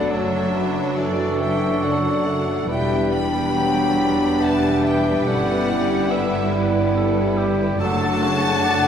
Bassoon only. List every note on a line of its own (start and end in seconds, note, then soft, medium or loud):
0.00 0.12 D3 soft
0.11 0.99 F#3 soft
0.98 1.84 E3 soft
1.82 2.27 D3 soft
2.26 2.68 A3 soft
2.69 3.28 G3 soft
3.55 4.43 F#3 soft
4.41 5.26 E3 soft
5.26 5.71 A3 medium
5.69 7.80 G3 medium
7.81 8.25 F#3 medium
8.24 8.67 C#3 medium
8.66 8.88 D3 medium